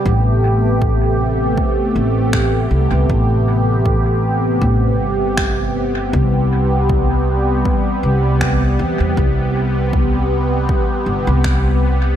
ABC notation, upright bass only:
X:1
M:4/4
L:1/16
Q:"Swing 16ths" 1/4=79
K:Am
V:1 name="Upright bass" clef=bass
A,,,8 z2 A,,,4 C,, C,, | A,,,8 A,,,2 G,,,6 | C,,8 z2 C,,4 E,, E,, | C,,8 z2 G,,, C,,4- C,, |]